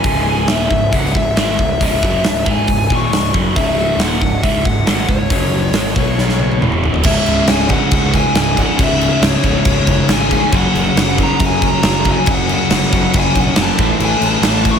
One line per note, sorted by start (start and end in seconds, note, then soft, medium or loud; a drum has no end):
0.00 0.45 G#5 medium
0.00 open hi-hat medium
0.04 0.45 C#1 loud
0.04 0.48 C#2 medium
0.04 0.48 G#2 medium
0.04 0.49 C#3 medium
0.04 kick loud
0.48 0.69 D#1 medium
0.48 0.69 D#2 medium
0.48 0.70 A#2 medium
0.48 0.70 D#3 medium
0.48 0.95 E5 medium
0.48 snare loud
0.48 open hi-hat soft
0.70 0.91 C#1 medium
0.70 0.88 C#2 medium
0.70 0.88 G#2 medium
0.70 kick medium
0.92 1.13 C#1 medium
0.92 1.13 C#2 medium
0.92 1.14 G#2 loud
0.92 1.14 C#3 medium
0.92 kick medium
0.92 open hi-hat soft
0.96 1.17 F#5 medium
1.05 snare soft
1.14 1.35 C#1 medium
1.14 1.32 C#2 medium
1.14 1.32 G#2 medium
1.14 1.37 E5 medium
1.14 kick medium
1.36 1.56 G#1 medium
1.36 1.57 G#2 medium
1.36 1.58 D#3 medium
1.36 1.58 G#3 loud
1.36 1.82 E5 medium
1.36 snare loud
1.36 open hi-hat medium
1.58 1.79 C#1 medium
1.58 1.76 C#2 medium
1.58 1.76 G#2 medium
1.58 kick medium
1.80 2.01 C#1 medium
1.80 2.01 C#2 medium
1.80 2.02 G#2 medium
1.80 2.01 C#3 loud
1.80 kick loud
1.80 open hi-hat medium
1.84 2.50 E5 medium
2.01 2.23 F#1 medium
2.01 2.23 F#2 medium
2.01 2.24 C#3 medium
2.01 2.24 F#3 medium
2.01 kick medium
2.23 2.44 C#1 medium
2.23 2.41 C#2 medium
2.23 2.42 G#2 medium
2.23 snare loud
2.23 open hi-hat medium
2.45 2.67 G#1 medium
2.45 2.67 G#2 medium
2.45 2.67 D#3 medium
2.45 2.67 G#3 loud
2.45 kick loud
2.51 2.93 G#5 loud
2.67 2.88 C#1 medium
2.67 2.85 C#2 medium
2.67 2.86 G#2 medium
2.67 kick medium
2.67 open hi-hat medium
2.90 3.09 D#1 medium
2.90 3.11 D#2 medium
2.90 3.12 A#2 medium
2.90 3.12 D#3 medium
2.90 kick loud
2.95 3.33 C#6 loud
3.10 3.31 C#1 medium
3.10 3.30 C#2 medium
3.10 3.30 G#2 medium
3.10 snare loud
3.10 open hi-hat medium
3.34 3.54 F#1 medium
3.34 3.55 F#2 medium
3.34 3.56 C#3 medium
3.34 3.56 F#3 loud
3.34 kick loud
3.56 3.96 C#1 medium
3.56 3.99 C#2 medium
3.56 3.99 G#2 loud
3.56 4.00 C#3 loud
3.56 4.01 E5 medium
3.56 kick loud
3.56 open hi-hat medium
3.96 4.18 D#1 medium
3.96 4.20 D#2 medium
3.96 4.21 A#2 medium
3.96 4.44 F#5 medium
3.96 snare loud
3.96 open hi-hat medium
4.01 4.21 D#3 medium
4.21 4.42 C#1 medium
4.21 4.38 C#2 medium
4.21 4.39 G#2 medium
4.21 kick medium
4.42 4.64 C#1 medium
4.42 4.63 C#2 medium
4.42 4.63 G#2 loud
4.42 4.64 C#3 loud
4.42 4.65 E5 medium
4.42 kick loud
4.42 open hi-hat soft
4.64 4.85 C#1 medium
4.64 4.82 C#2 medium
4.64 4.82 G#2 medium
4.64 5.10 F#5 loud
4.64 kick medium
4.86 5.07 G#1 medium
4.86 5.07 G#2 medium
4.86 5.08 D#3 medium
4.86 5.08 G#3 medium
4.86 snare loud
4.86 open hi-hat medium
5.08 5.29 C#1 medium
5.08 5.26 C#2 medium
5.08 5.26 G#2 medium
5.08 6.57 C#5 medium
5.08 kick medium
5.30 5.71 F#1 loud
5.30 5.73 F#2 medium
5.30 5.74 C#3 medium
5.30 5.74 F#3 medium
5.30 kick loud
5.30 open hi-hat medium
5.73 5.94 G#1 medium
5.73 5.94 G#2 medium
5.73 5.95 D#3 medium
5.73 5.95 G#3 medium
5.73 snare loud
5.73 open hi-hat medium
5.95 6.57 B1 medium
5.95 6.60 B2 medium
5.95 6.60 F#3 medium
5.95 6.61 B3 medium
5.95 kick medium
6.18 snare medium
6.29 snare medium
6.39 high tom medium
6.51 high tom medium
6.60 7.01 E1 medium
6.60 7.03 E2 medium
6.60 7.04 B2 medium
6.60 7.05 E3 loud
6.60 mid tom medium
6.72 mid tom medium
6.84 floor tom medium
6.94 floor tom medium
7.03 7.18 C#1 loud
7.03 7.72 C#2 medium
7.03 7.69 G#2 medium
7.03 7.69 C#3 medium
7.03 13.74 C#4 medium
7.03 13.74 G#4 medium
7.03 7.25 E5 medium
7.03 10.50 E5 medium
7.03 kick loud
7.03 crash loud
7.03 crash medium
7.26 7.40 C#1 medium
7.26 7.49 E5 medium
7.26 crash medium
7.47 7.76 C#1 medium
7.47 7.69 G#5 medium
7.47 snare loud
7.47 crash medium
7.59 snare soft
7.69 8.32 C#2 medium
7.69 8.34 G#2 medium
7.69 8.34 C#3 medium
7.69 8.15 F#5 medium
7.69 kick medium
7.69 crash medium
7.91 8.19 C#2 medium
7.91 kick loud
7.91 crash medium
8.13 8.37 G#5 loud
8.13 kick medium
8.13 crash medium
8.33 8.62 C#1 medium
8.33 8.75 C#2 medium
8.33 8.77 G#2 medium
8.33 8.78 C#3 loud
8.33 snare loud
8.33 crash medium
8.38 8.59 G#5 medium
8.57 8.77 C#2 medium
8.57 8.78 G#2 medium
8.57 8.77 C#3 loud
8.57 8.80 F#5 medium
8.57 kick medium
8.57 crash medium
8.76 9.06 C#1 loud
8.76 9.41 C#2 medium
8.76 9.42 G#2 medium
8.76 kick loud
8.76 crash medium
8.80 9.41 C#3 loud
8.80 9.21 E5 loud
9.01 crash medium
9.21 9.35 C#1 medium
9.21 10.13 C#5 medium
9.21 snare loud
9.21 crash medium
9.33 snare soft
9.42 9.57 C#1 medium
9.42 10.06 C#2 medium
9.42 10.08 G#2 medium
9.42 10.07 C#3 medium
9.42 kick medium
9.42 crash medium
9.65 9.79 C#1 loud
9.65 kick loud
9.65 crash medium
9.87 10.01 F#1 medium
9.87 kick medium
9.87 crash medium
10.08 10.36 G#1 loud
10.08 10.50 C#2 medium
10.08 10.52 G#2 medium
10.08 10.53 C#3 medium
10.08 snare loud
10.08 crash medium
10.13 10.56 G#5 medium
10.30 10.52 C#2 medium
10.30 10.52 G#2 medium
10.30 10.51 C#3 medium
10.30 kick medium
10.30 crash medium
10.50 10.66 F#1 loud
10.50 11.19 F#2 loud
10.50 11.17 C#3 loud
10.50 13.74 F#3 medium
10.50 kick loud
10.50 crash medium
10.55 11.16 F#3 loud
10.55 11.16 F#5 loud
10.74 10.88 F#1 medium
10.74 crash medium
10.95 11.23 F#1 medium
10.95 snare loud
10.95 crash medium
11.09 snare soft
11.16 11.81 F#2 medium
11.16 11.82 C#3 medium
11.16 11.81 F#3 medium
11.16 kick medium
11.16 crash medium
11.23 11.43 A#5 loud
11.40 11.67 F#2 loud
11.40 kick loud
11.40 crash medium
11.46 11.65 G#5 medium
11.62 kick medium
11.62 crash medium
11.67 12.09 A#5 loud
11.82 12.10 F#1 loud
11.82 12.25 F#2 medium
11.82 12.26 C#3 medium
11.82 12.26 F#3 medium
11.82 snare loud
11.82 crash loud
12.05 12.26 C#3 medium
12.05 12.25 F#3 medium
12.05 kick medium
12.05 crash medium
12.09 12.25 F#2 medium
12.09 12.30 G#5 medium
12.26 12.54 F#1 loud
12.26 12.90 F#2 medium
12.26 12.91 C#3 loud
12.26 12.91 F#3 loud
12.26 kick loud
12.26 crash medium
12.31 12.51 F#5 loud
12.49 crash medium
12.54 13.18 F#5 medium
12.70 12.84 F#1 medium
12.70 snare loud
12.70 crash loud
12.82 snare soft
12.92 13.06 F#1 medium
12.92 13.56 F#2 medium
12.92 13.56 C#3 medium
12.92 13.55 F#3 medium
12.92 kick medium
12.92 crash medium
13.14 13.27 F#1 medium
13.14 kick loud
13.14 crash medium
13.19 13.38 G#5 medium
13.35 13.49 B1 medium
13.35 kick medium
13.35 crash medium
13.40 13.60 F#5 loud
13.56 13.70 F#1 medium
13.56 13.77 F#2 medium
13.56 13.78 C#3 medium
13.56 snare loud
13.56 crash medium
13.61 13.79 F#3 medium
13.61 13.90 A5 loud
13.77 13.92 A1 medium
13.77 14.41 A2 loud
13.77 14.44 E3 medium
13.77 14.79 A3 medium
13.77 14.79 E4 medium
13.77 14.79 B4 medium
13.77 kick loud
13.77 crash medium
13.82 14.45 A3 loud
14.00 14.13 A1 loud
14.00 crash medium
14.05 14.24 G#5 loud
14.21 14.35 A1 medium
14.21 crash medium
14.26 14.64 A5 loud
14.41 14.69 A1 medium
14.41 14.79 A2 medium
14.41 14.79 E3 medium
14.41 14.79 A3 medium
14.41 snare loud
14.41 crash medium
14.55 snare soft
14.65 kick medium
14.65 crash medium
14.71 14.79 C#6 loud